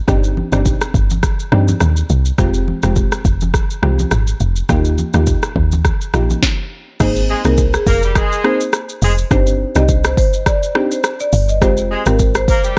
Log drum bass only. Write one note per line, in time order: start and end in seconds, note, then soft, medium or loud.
0.08 0.42 G1 loud
0.52 0.75 G1 loud
0.94 1.29 G1 medium
1.52 1.74 G2 loud
1.81 2.03 D#2 medium
2.10 2.32 C2 loud
2.38 2.73 F1 loud
2.83 3.06 F1 loud
3.25 3.59 F1 medium
3.83 4.05 C2 loud
4.12 4.34 G#1 loud
4.41 4.63 F1 loud
4.69 5.04 D#2 loud
5.14 5.36 D#2 loud
5.56 5.90 D#2 medium
6.14 6.36 A#1 medium
7.00 7.35 G#1 loud
7.45 7.77 C2 medium
7.87 8.21 F1 medium
9.02 9.24 F1 medium
9.31 9.65 G1 loud
9.76 10.19 C2 medium
10.17 10.52 G1 medium
11.33 11.63 G1 loud
11.62 11.96 F1 loud
12.06 12.50 G#1 medium
12.48 12.79 F1 medium